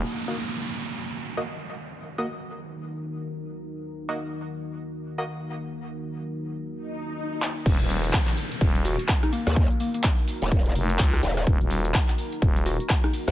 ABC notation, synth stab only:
X:1
M:4/4
L:1/16
Q:"Swing 16ths" 1/4=126
K:Ebm
V:1 name="Synth stab"
z2 [B,Ge] z8 [B,Ge] z4 | z2 [B,Ge] z12 z | z2 [B,Ge] z8 [B,Ge] z4 | z16 |
z16 | z16 | z16 |]